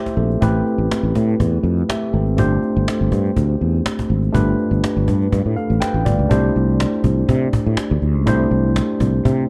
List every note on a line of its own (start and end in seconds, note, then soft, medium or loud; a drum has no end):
0.00 0.37 A3 medium
0.00 0.42 E4 medium
0.00 0.43 F4 medium
0.00 0.42 G4 medium
0.00 0.43 C5 medium
0.00 0.16 E5 medium
0.06 cajon bass medium
0.06 cajon slap soft
0.17 0.35 A#1 medium
0.17 0.40 C4 medium
0.17 0.64 A4 medium
0.31 cajon slap soft
0.40 0.60 A1 loud
0.40 2.33 A3 medium
0.40 1.86 C4 medium
0.40 1.86 E4 medium
0.40 1.86 G4 medium
0.40 1.87 B4 medium
0.40 cajon bass loud
0.67 cajon slap soft
0.78 0.87 A1 medium
0.78 cajon slap soft
0.91 cajon slap loud
1.03 1.12 A1 medium
1.15 1.34 A2 loud
1.15 cajon bass medium
1.29 cajon slap soft
1.40 1.58 E2 medium
1.40 cajon bass medium
1.40 cajon slap soft
1.63 1.82 F2 medium
1.63 cajon slap soft
1.78 cajon slap soft
1.89 2.13 G4 medium
1.89 2.12 E5 medium
1.89 cajon slap loud
2.03 cajon slap soft
2.13 2.38 G#1 medium
2.13 2.60 C4 medium
2.13 2.60 A4 medium
2.27 cajon slap soft
2.37 2.56 G1 loud
2.37 4.30 A3 medium
2.37 4.30 D4 medium
2.37 4.31 F4 medium
2.37 4.31 G4 medium
2.37 4.31 C5 medium
2.37 cajon bass loud
2.62 cajon slap soft
2.76 2.85 G1 loud
2.76 cajon slap soft
2.88 cajon slap loud
3.01 3.09 G1 medium
3.12 3.30 G2 loud
3.12 cajon bass medium
3.26 cajon slap soft
3.36 3.55 D2 loud
3.36 cajon bass medium
3.36 cajon slap soft
3.61 3.79 E2 medium
3.61 cajon slap soft
3.75 cajon slap soft
3.86 cajon slap loud
3.99 cajon bass medium
3.99 cajon slap soft
4.10 4.28 G#1 medium
4.23 cajon slap soft
4.32 4.53 G1 loud
4.32 5.54 A3 medium
4.32 5.54 D4 medium
4.32 5.54 F4 medium
4.32 5.54 G4 medium
4.32 5.55 B4 medium
4.32 cajon bass loud
4.48 cajon slap soft
4.59 cajon slap soft
4.71 4.80 G1 loud
4.71 cajon slap soft
4.84 cajon slap loud
4.96 5.05 G1 loud
4.96 cajon slap soft
5.08 5.26 G2 loud
5.08 cajon bass medium
5.21 cajon slap soft
5.32 5.42 G2 loud
5.32 cajon bass medium
5.32 cajon slap soft
5.46 5.54 A2 medium
5.46 cajon slap soft
5.56 5.81 A4 medium
5.56 5.80 F5 medium
5.56 cajon slap soft
5.70 5.79 A1 medium
5.70 cajon slap soft
5.80 6.05 B4 medium
5.80 6.04 G5 medium
5.80 cajon slap loud
5.94 6.03 A1 loud
5.94 cajon slap soft
6.05 6.16 G1 medium
6.05 6.53 F4 medium
6.05 6.52 D5 medium
6.05 cajon bass loud
6.19 6.28 C#2 medium
6.19 cajon slap soft
6.29 6.49 C2 loud
6.29 8.22 A3 medium
6.29 8.23 D4 medium
6.29 8.23 E4 medium
6.29 8.23 G4 medium
6.29 8.24 C5 medium
6.29 cajon bass loud
6.56 6.84 C2 medium
6.56 cajon slap soft
6.69 cajon slap soft
6.80 cajon slap loud
6.94 cajon slap soft
7.04 7.22 C2 loud
7.04 cajon bass medium
7.18 cajon slap soft
7.29 7.47 C3 loud
7.29 cajon bass medium
7.53 cajon bass loud
7.66 7.75 A2 medium
7.66 cajon slap soft
7.77 cajon slap loud
7.91 8.00 D2 loud
7.91 cajon slap soft
8.02 8.15 D2 medium
8.02 cajon slap soft
8.15 8.27 C#2 medium
8.15 cajon slap soft
8.26 8.45 C2 loud
8.26 9.49 A3 medium
8.26 9.49 D4 medium
8.26 9.49 E4 medium
8.26 9.49 G4 medium
8.26 9.49 C5 medium
8.26 cajon bass loud
8.51 8.79 C2 medium
8.51 cajon slap soft
8.65 cajon slap soft
8.76 cajon slap loud
8.89 cajon slap soft
9.00 9.19 C2 loud
9.00 cajon bass medium
9.14 cajon slap soft
9.25 9.44 C3 loud
9.25 cajon bass medium